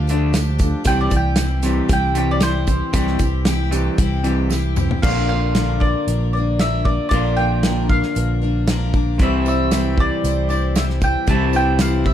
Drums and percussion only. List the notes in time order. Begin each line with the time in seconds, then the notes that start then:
0.09 closed hi-hat
0.34 snare, closed hi-hat, tambourine
0.59 kick, closed hi-hat, tambourine
0.85 kick, closed hi-hat, tambourine
1.11 kick, closed hi-hat, tambourine
1.36 snare, closed hi-hat, tambourine
1.63 snare, closed hi-hat, tambourine
1.89 kick, closed hi-hat
2.15 closed hi-hat
2.41 snare, closed hi-hat, tambourine
2.67 kick, closed hi-hat, tambourine
2.94 kick, closed hi-hat, tambourine
3.07 snare
3.19 kick, closed hi-hat, tambourine
3.45 snare, closed hi-hat, tambourine
3.72 closed hi-hat, tambourine
3.98 kick, closed hi-hat, tambourine
4.24 closed hi-hat, tambourine
4.50 snare, tambourine
4.76 mid tom, tambourine
4.91 floor tom
5.03 kick, crash
5.55 snare, closed hi-hat
5.81 kick
6.08 closed hi-hat
6.59 snare, closed hi-hat
6.85 kick
7.11 kick, closed hi-hat
7.63 snare, closed hi-hat
7.89 kick
8.03 snare
8.16 closed hi-hat
8.67 snare, closed hi-hat
8.94 kick
9.19 kick, closed hi-hat
9.46 tambourine
9.71 snare, closed hi-hat, tambourine
9.98 kick
10.24 closed hi-hat, tambourine
10.50 tambourine
10.75 snare, closed hi-hat, tambourine
10.89 snare
11.02 kick, tambourine
11.27 kick, closed hi-hat, tambourine
11.53 tambourine
11.79 snare, closed hi-hat, tambourine
12.06 kick, tambourine